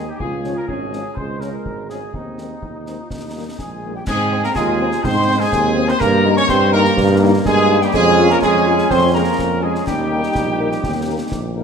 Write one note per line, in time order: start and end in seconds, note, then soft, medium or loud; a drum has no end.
0.00 0.12 D#2 medium
0.00 0.17 D#4 medium
0.08 0.20 G4 medium
0.19 0.60 C#2 medium
0.19 0.65 F4 medium
0.19 0.53 G#4 medium
0.19 concert bass drum medium
0.44 0.53 F3 medium
0.44 0.53 G#3 medium
0.44 0.53 C#4 medium
0.44 snare soft
0.56 0.68 A#4 medium
0.67 1.09 G#1 medium
0.67 1.14 C#4 medium
0.67 1.13 G#4 medium
0.67 concert bass drum medium
0.92 1.01 F3 soft
0.92 1.01 G#3 soft
0.92 1.01 C#4 soft
0.92 snare soft
1.15 1.57 C#2 medium
1.15 2.16 G#3 medium
1.15 1.40 C5 medium
1.15 concert bass drum medium
1.40 1.50 F3 soft
1.40 1.50 G#3 soft
1.40 1.50 C#4 soft
1.40 1.89 A#4 medium
1.40 snare soft
1.65 2.06 G#1 soft
1.65 concert bass drum medium
1.89 1.98 F3 soft
1.89 1.99 G#3 soft
1.89 1.98 C#4 soft
1.89 2.12 G#4 medium
1.89 snare soft
2.14 2.54 D#2 soft
2.14 2.58 C4 soft
2.14 3.55 D#4 soft
2.14 concert bass drum medium
2.38 2.47 D#3 soft
2.38 2.47 G#3 soft
2.38 2.47 C4 soft
2.38 snare soft
2.62 2.98 D#2 soft
2.62 3.01 D#4 soft
2.62 concert bass drum medium
2.86 2.95 D#3 soft
2.86 2.96 G#3 soft
2.86 2.95 C4 soft
2.86 snare soft
3.00 3.10 F4 soft
3.10 3.51 D#2 soft
3.10 3.56 D#4 soft
3.10 concert bass drum medium
3.10 snare soft
3.35 3.44 D#3 soft
3.35 3.44 G3 soft
3.35 3.44 A#3 soft
3.59 3.99 A#1 medium
3.59 3.96 G#3 medium
3.59 3.93 G#4 medium
3.59 3.93 G#5 medium
3.59 concert bass drum medium
3.59 snare soft
3.83 3.92 D#3 soft
3.83 3.92 G3 soft
3.83 3.92 A#3 soft
3.95 4.09 G3 medium
3.95 4.01 G4 medium
3.95 4.07 G5 soft
4.07 4.48 G#2 medium
4.07 4.43 G#3 medium
4.07 4.52 C4 medium
4.07 4.41 G#4 loud
4.07 4.46 G#5 medium
4.07 concert bass drum medium
4.07 snare medium
4.07 crash medium
4.32 4.40 C4 medium
4.43 4.49 A#3 medium
4.43 4.50 A#4 loud
4.43 4.58 A#5 medium
4.43 snare medium
4.55 4.96 D#2 medium
4.55 4.91 G#3 loud
4.55 5.00 F4 loud
4.55 5.00 G#4 loud
4.55 5.06 G#5 medium
4.55 concert bass drum medium
4.55 snare medium
4.80 4.89 C4 medium
4.92 snare medium
5.03 5.44 G#2 loud
5.03 5.42 C4 loud
5.03 5.53 D#4 medium
5.03 5.40 C5 loud
5.03 5.39 C6 loud
5.03 concert bass drum medium
5.03 snare medium
5.28 5.37 C4 medium
5.40 5.87 G#3 loud
5.40 5.88 G#4 loud
5.40 5.90 G#5 loud
5.52 5.92 D#2 loud
5.52 6.01 C4 loud
5.52 concert bass drum medium
5.52 snare medium
5.76 5.85 C4 medium
5.88 5.93 C4 loud
5.88 6.01 C5 loud
5.88 6.02 C6 loud
5.88 snare medium
5.99 6.41 G2 loud
5.99 6.34 A#3 loud
5.99 6.46 A#3 loud
5.99 6.36 A#4 loud
5.99 6.36 A#5 loud
5.99 concert bass drum medium
5.99 snare medium
5.99 crash soft
6.24 6.33 G3 medium
6.24 6.34 A#3 medium
6.24 6.33 D#4 medium
6.37 6.43 C#4 loud
6.37 6.48 C#5 loud
6.37 6.48 C#6 loud
6.37 snare medium
6.49 6.89 G2 loud
6.49 6.97 G3 loud
6.49 6.76 C4 loud
6.49 6.73 C5 loud
6.49 6.72 C6 loud
6.49 concert bass drum medium
6.49 snare medium
6.73 6.82 G3 medium
6.73 6.82 A#3 medium
6.73 7.22 A#3 loud
6.73 6.82 D#4 medium
6.73 7.18 A#4 loud
6.73 7.19 A#5 loud
6.85 snare medium
6.97 7.37 G2 loud
6.97 7.90 A#3 loud
6.97 concert bass drum medium
6.97 snare medium
7.22 7.31 G3 medium
7.22 7.31 A#3 medium
7.22 7.31 D#4 medium
7.45 7.85 G2 loud
7.45 7.80 G#3 loud
7.45 7.79 G#4 loud
7.45 7.80 G#5 loud
7.45 concert bass drum medium
7.45 snare medium
7.69 7.78 G3 medium
7.69 7.78 A#3 medium
7.69 7.78 D#4 medium
7.81 7.94 G3 medium
7.81 7.94 G4 loud
7.81 7.87 G5 medium
7.81 snare medium
7.94 8.34 F2 loud
7.94 8.32 G#3 loud
7.94 9.83 C#4 loud
7.94 8.28 G#4 loud
7.94 8.27 G#5 loud
7.94 concert bass drum medium
7.94 snare medium
7.94 crash soft
8.18 8.27 G#3 medium
8.18 8.27 C#4 medium
8.18 8.27 F4 medium
8.30 8.41 A#3 loud
8.30 8.36 A#4 loud
8.30 8.41 A#5 loud
8.30 snare medium
8.42 8.82 F2 medium
8.42 8.87 G#3 loud
8.42 8.87 G#4 loud
8.42 8.93 G#5 loud
8.42 concert bass drum medium
8.42 snare medium
8.66 8.75 G#3 medium
8.66 8.75 C#4 medium
8.66 8.75 F4 medium
8.78 snare medium
8.90 9.30 F2 loud
8.90 9.13 C4 loud
8.90 9.01 C5 loud
8.90 9.16 C6 loud
8.90 concert bass drum medium
8.90 snare medium
9.14 9.23 G#3 medium
9.14 9.59 A#3 medium
9.14 9.23 C#4 medium
9.14 9.23 F4 medium
9.14 9.60 A#4 medium
9.14 9.64 A#5 medium
9.39 9.79 F2 medium
9.39 concert bass drum medium
9.39 snare medium
9.62 9.85 G#3 medium
9.62 9.71 G#3 medium
9.62 9.71 C#4 medium
9.62 9.72 F4 medium
9.62 9.87 G#4 loud
9.62 9.86 G#5 medium
9.75 snare medium
9.87 10.27 D#2 medium
9.87 11.52 G3 medium
9.87 11.52 D#4 medium
9.87 11.52 G4 loud
9.87 11.52 G5 loud
9.87 concert bass drum medium
9.87 snare medium
9.87 crash soft
10.11 10.20 A#3 medium
10.11 10.20 D#4 medium
10.11 10.20 A#4 medium
10.23 snare medium
10.35 10.75 A#1 medium
10.35 concert bass drum medium
10.35 snare medium
10.59 10.68 A#3 medium
10.59 10.68 D#4 medium
10.59 10.68 A#4 medium
10.72 snare medium
10.83 11.19 D#2 medium
10.83 concert bass drum medium
10.83 snare medium
11.07 11.16 A#3 medium
11.07 11.16 D#4 medium
11.07 11.16 A#4 medium
11.31 11.64 A#1 medium
11.31 concert bass drum medium
11.31 snare medium
11.55 11.64 A#3 medium
11.55 11.64 D#4 medium
11.55 11.64 A#4 medium